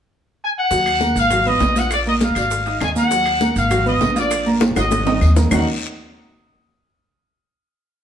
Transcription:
0.43 trumpet section G#5
0.58 trumpet section F#5
0.71 upright bass D#2, grand piano F#3 F#4 F#5, high bongo, high conga, high timbale, long guiro, maracas
0.86 high conga, high timbale, claves, maracas
1.01 grand piano A#3 A#4 A#5, high bongo, high conga, low timbale, short guiro, maracas
1.16 upright bass G#1, trumpet section F5, high timbale, short guiro, maracas
1.30 grand piano F#3 F#4 F#5, high bongo, high conga, low conga, high timbale, long guiro, claves, maracas
1.46 grand piano B3 B4 B5, trumpet section D#5, high conga, low conga, maracas
1.60 upright bass A#1, high bongo, low bongo, high conga, high timbale, low timbale, short guiro, maracas
1.76 grand piano F4 F5 F6, trumpet section F#5, high conga, high timbale, short guiro, maracas
1.91 trumpet section D5, high bongo, high timbale, long guiro, claves, maracas
2.06 grand piano A#3 A#4 A#5, trumpet section D#5, high conga, maracas
2.21 trumpet section F5, high bongo, high conga, high timbale, low timbale, short guiro, maracas
2.35 upright bass G#1, grand piano F#4 D5, high bongo, high conga, high timbale, short guiro, claves, maracas
2.51 high bongo, high conga, long guiro, maracas
2.66 grand piano D#4 D#5 D#6, high bongo, high conga, high timbale, maracas
2.81 upright bass D#2, trumpet section G#5, high bongo, low bongo, high conga, high timbale, low timbale, short guiro, claves, maracas
2.96 grand piano A#3 A#4 A#5, trumpet section F#5, high bongo, high conga, short guiro, maracas
3.11 grand piano F#3 F#4 F#5, high bongo, high conga, high timbale, long guiro, maracas
3.25 high conga, high timbale, claves, maracas
3.41 grand piano A#3 A#4 A#5, high bongo, high conga, low timbale, short guiro, maracas
3.56 upright bass G#1, trumpet section F5, high timbale, short guiro, maracas
3.71 grand piano F#3 F#4 F#5, high bongo, high conga, low conga, high timbale, long guiro, claves, maracas
3.86 grand piano B3 B4 B5, trumpet section D#5, high conga, low conga, maracas
4.01 upright bass A#1, high bongo, low bongo, high conga, high timbale, low timbale, short guiro, maracas
4.16 grand piano F4 F5 F6, trumpet section D5, high conga, high timbale, short guiro, maracas
4.31 high bongo, high conga, high timbale, long guiro, claves, maracas
4.46 grand piano A#3 A#4 A#5, high conga, maracas
4.61 high bongo, high conga, high timbale, short guiro, maracas
4.71 high conga
4.76 upright bass G#1, grand piano F#4 F#5 F#6, trumpet section D#5, high bongo, high timbale, short guiro, claves, maracas
4.91 high bongo, high conga, long guiro, maracas
5.01 low conga
5.06 grand piano D#4 D#5 D#6, low bongo, low timbale, maracas
5.11 low conga
5.21 upright bass D#2, low conga, low timbale, short guiro, claves, maracas
5.31 low conga
5.36 grand piano A#3 A#4 A#5, low bongo, low timbale, short guiro, maracas
5.41 low conga
5.51 upright bass D#2, grand piano D#3 A#3 C#4 D#4 F#4 A#4, trumpet section F#5, low bongo, low conga, low timbale, long guiro, claves, maracas

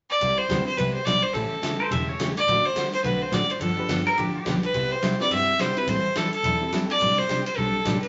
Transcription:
0.10 fiddle D5
0.21 double bass C2, steel-string acoustic guitar C3 G3 B3 E4 G4, kick, ride
0.38 fiddle C5
0.49 double bass D2, steel-string acoustic guitar C3 G3 B3 E4 G4, upright piano C4 E4 G4 B4, kick, snare, hi-hat pedal, ride
0.67 fiddle C5
0.77 double bass C2, steel-string acoustic guitar C3 G3 B3 E4 G4, fiddle B4, kick, ride
0.94 fiddle C5
1.05 double bass B1, steel-string acoustic guitar C3 G3 B3 E4 G4, fiddle D5, kick, snare, hi-hat pedal, ride
1.23 fiddle C5
1.34 double bass A1, steel-string acoustic guitar C#3 E3 A3 C#4 G4, fiddle A4, kick, ride
1.62 steel-string acoustic guitar C#3 E3 A3 C#4 G4, kick, snare, hi-hat pedal, ride
1.80 pedal steel guitar C5
1.90 double bass E1, steel-string acoustic guitar C#3 E3 A3 C#4 G4, pedal steel guitar E5, kick, ride
2.09 pedal steel guitar C#5
2.19 steel-string acoustic guitar C#3 E3 A3 C#4 G4, kick, snare, hi-hat pedal, ride
2.37 fiddle D5, ride
2.48 double bass A1, steel-string acoustic guitar D3 A3 C4 F#4 A4, kick, ride
2.65 fiddle C5
2.75 steel-string acoustic guitar D3 A3 C4 F#4 A4, kick, snare, hi-hat pedal, ride
2.93 fiddle C5, ride
3.03 double bass B1, steel-string acoustic guitar D3 A3 C4 F#4 A4, fiddle B4, kick, ride
3.22 fiddle C5
3.32 double bass A1, steel-string acoustic guitar D3 A3 C4 F#4 A4, fiddle D5, kick, snare, hi-hat pedal, ride
3.50 fiddle C5, ride
3.60 double bass G1, steel-string acoustic guitar D3 F3 B3 D4 G4, fiddle A4, kick, ride
3.77 upright piano D4 F4 G4 B4
3.88 double bass G1, steel-string acoustic guitar D3 F3 B3 D4 G4, kick, snare, hi-hat pedal, ride
4.06 upright piano D4 F4 G4 B4, pedal steel guitar A#4, ride
4.17 double bass A1, steel-string acoustic guitar D3 F3 B3 D4 G4, pedal steel guitar G4, kick, ride
4.35 pedal steel guitar G4
4.45 double bass B1, steel-string acoustic guitar D3 F3 B3 D4 G4, upright piano D4 F4 G4 B4, kick, snare, hi-hat pedal, ride
4.63 fiddle B4, ride
4.74 double bass C2, steel-string acoustic guitar C3 G3 B3 E4 G4, kick, ride
4.92 fiddle C5
5.02 steel-string acoustic guitar C3 G3 B3 E4 G4, kick, snare, hi-hat pedal, ride
5.19 upright piano C4 E4 G4 B4, fiddle D5, snare
5.31 double bass G2, steel-string acoustic guitar C3 G3 B3 E4 G4, fiddle E5, kick, ride
5.59 steel-string acoustic guitar C3 G3 B3 E4 G4, fiddle C5, kick, snare, hi-hat pedal, ride
5.76 upright piano C4 E4 G4 B4, fiddle B4, ride
5.88 double bass A1, steel-string acoustic guitar E3 G3 C4 E4 A4, fiddle C5, kick, ride
6.15 steel-string acoustic guitar E3 G3 C4 E4 A4, fiddle A4, kick, snare, hi-hat pedal, ride
6.33 fiddle A4, ride
6.44 double bass E1, steel-string acoustic guitar E3 G3 C4 E4 A4, kick, ride
6.61 upright piano C4 E4 G4 A4
6.72 steel-string acoustic guitar E3 G3 C4 E4 A4, kick, snare, hi-hat pedal, ride
6.90 fiddle D5, ride
7.01 double bass A1, steel-string acoustic guitar C3 G3 C4 D4 G4, kick, ride
7.18 fiddle C5, snare
7.29 steel-string acoustic guitar C3 G3 C4 D4 G4, kick, snare, hi-hat pedal, ride
7.46 fiddle C5, ride
7.57 double bass B1, steel-string acoustic guitar C3 G3 C4 D4 G4, fiddle A4, kick
7.85 double bass A1, steel-string acoustic guitar C3 G3 C4 D4 G4, kick, snare, hi-hat pedal, ride
8.02 fiddle B4, ride

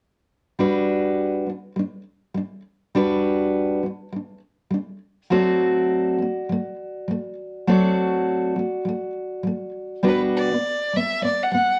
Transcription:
0.59 steel-string acoustic guitar G3 D4 F#4 B4
1.47 steel-string acoustic guitar G3 D4
1.76 steel-string acoustic guitar G3 D4
2.34 steel-string acoustic guitar G3 D4
2.95 steel-string acoustic guitar G3 D4 F#4 B4
3.83 steel-string acoustic guitar G3 D4
4.13 steel-string acoustic guitar G3 D4
4.71 steel-string acoustic guitar G3 D4
5.30 steel-string acoustic guitar F#3 A3 C4 F#4 D5
6.18 steel-string acoustic guitar F#3 A3
6.49 steel-string acoustic guitar F#3 A3
7.08 steel-string acoustic guitar F#3 A3
7.67 steel-string acoustic guitar F#3 A3 C4 F#4 D5
8.56 steel-string acoustic guitar F#3 A3
8.85 steel-string acoustic guitar F#3 A3
9.43 steel-string acoustic guitar F#3 A3
10.03 steel-string acoustic guitar G3 B3 D4 F#4 B4
10.08 violin B4
10.37 violin D5
10.51 steel-string acoustic guitar G3 B3
10.93 steel-string acoustic guitar G3 B3, violin E5
11.22 steel-string acoustic guitar G3 B3, violin D5
11.43 violin F#5
11.51 steel-string acoustic guitar G3 B3, violin F#5

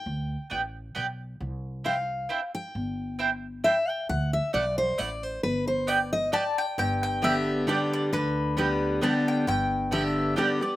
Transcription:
Already playing: steel-string acoustic guitar G5
0.06 upright bass D2
0.50 upright bass A1, mandolin B3 G4 D5 G5
0.95 upright bass B1, mandolin B3 G4 D5 G5
1.40 upright bass C2
1.84 mandolin C4 E4 C5 G5, steel-string acoustic guitar F5
2.29 mandolin C4 E4 C5 G5
2.55 steel-string acoustic guitar G5
2.75 upright bass G1
3.19 mandolin C4 E4 C5 G5
3.64 mandolin C4 E4 C5 G5, steel-string acoustic guitar E5
3.89 steel-string acoustic guitar G5
4.09 upright bass D2, steel-string acoustic guitar F#5
4.33 steel-string acoustic guitar E5
4.53 upright bass B1, mandolin A3 E4 D5 F#5, steel-string acoustic guitar D5
4.78 steel-string acoustic guitar C5
4.98 upright bass A1, mandolin A3 E4 D5 F#5, steel-string acoustic guitar D5
5.23 steel-string acoustic guitar C5
5.43 upright bass G1, steel-string acoustic guitar B4
5.67 steel-string acoustic guitar C5
5.87 mandolin B3 G4 D5 G5, steel-string acoustic guitar D5
6.13 steel-string acoustic guitar D#5
6.32 mandolin B3 G4 D5 G5 A5, steel-string acoustic guitar D5
6.58 mandolin G5
6.78 upright bass G1, steel-string acoustic guitar G2, mandolin G5
7.03 mandolin G5
7.22 steel-string acoustic guitar D3 G3 B3 G4, mandolin B3 G4 D5 E5 G5
7.67 steel-string acoustic guitar D3 G3 B3 G4, mandolin B3 G4 D5 G5
7.93 mandolin D5
8.13 upright bass D2, steel-string acoustic guitar D3, mandolin B4
8.57 steel-string acoustic guitar D3 G3 B3 G4, mandolin B3 G4 B4 D5 G5
9.01 steel-string acoustic guitar D3 G3 B3 G4, mandolin B3 G4 D5 G5 A5
9.28 mandolin G5
9.47 upright bass G1, steel-string acoustic guitar G2, mandolin G5
9.91 steel-string acoustic guitar D3 G3 B3 G4, mandolin B3 G4 D5 E5 G5
10.36 steel-string acoustic guitar D3 G3 B3 G4, mandolin B3 G4 D5 G5
10.61 steel-string acoustic guitar B3 G4, mandolin D5

